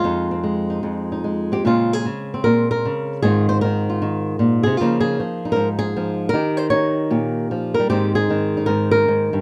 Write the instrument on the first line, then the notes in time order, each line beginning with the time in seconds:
nylon-string guitar
Already playing: G#3 C4 F4
0.04 F2 D#4
0.31 C4
0.43 G#3
0.70 D#4
0.83 F2
1.12 D#4
1.24 G#3
1.52 C4 G4
1.65 A#2 C#3 G#3 C4 F4
1.93 G#4
2.05 C#3
2.34 C4
2.44 A#2 A#4
2.71 A#4
2.85 C#3
3.22 G#2 D#3 C4 F4 G#4
3.49 C5
3.61 D#3 A#4
3.89 F4
4.02 D#3
4.39 A#2
4.63 C3 G#4
4.77 C#3 F3 F4
4.81 A#3 D#4
5.00 G#4
5.20 F3
5.45 D#4
5.52 A#4
5.56 G#2
5.79 G#4
5.96 F3
6.29 A#4
6.33 D#3 D#4 G4
6.57 C5
6.70 D#4 C#5
7.11 A#2 G4
7.51 F3
7.74 A#4
7.79 G3
7.89 G#2 D#3 C4 D#4 G4
8.15 G#4
8.30 D#3
8.57 D#4
8.66 G#2 A#4
8.91 A#4
9.08 G#2
9.33 G2